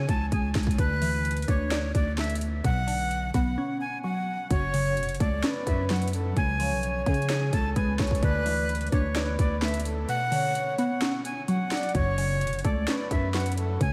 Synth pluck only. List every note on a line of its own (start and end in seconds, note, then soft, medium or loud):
0.00 0.32 F3 medium
0.00 0.78 C#4 medium
0.00 0.78 C#5 loud
0.32 0.78 G#3 medium
0.78 1.95 D3 medium
1.02 2.18 E3 medium
1.48 2.64 D4 loud
1.71 2.64 D5 loud
2.18 2.65 A3 medium
2.64 3.81 B2 medium
2.87 4.04 D3 medium
3.34 4.51 B3 medium
3.58 4.51 C#4 medium
4.04 4.51 F#3 loud
4.51 5.67 F#2 medium
4.74 5.90 C#3 medium
5.20 6.37 A3 medium
5.44 6.37 C#4 loud
5.90 6.37 F#3 medium
6.36 7.53 C#3 medium
6.60 7.76 F3 medium
7.06 8.23 C#4 medium
7.30 8.23 C#5 loud
7.76 8.23 G#3 loud
8.23 9.39 D3 loud
8.46 9.62 E3 medium
8.92 10.09 D4 loud
9.16 10.09 D5 loud
9.62 10.09 A3 medium
10.08 11.25 B2 medium
10.32 11.48 D3 medium
10.78 11.95 B3 medium
11.02 11.95 C#4 loud
11.48 11.95 F#3 loud
11.95 13.11 F#2 medium
12.18 13.34 C#3 medium
12.64 13.81 A3 medium
12.88 13.81 C#4 loud
13.35 13.81 F#3 medium
13.81 13.93 C#3 loud